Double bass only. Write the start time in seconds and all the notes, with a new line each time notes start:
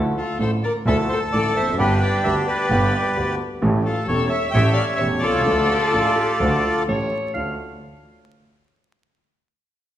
Already playing: D2
0.39 A1
0.85 D2
1.33 A1
1.56 F1
1.79 G1
2.25 D2
2.70 G1
3.17 D2
3.63 A1
4.08 E1
4.54 A1
5.00 E1
5.23 C2
5.47 D2
5.93 A1
6.41 D2
6.88 A1
7.36 D2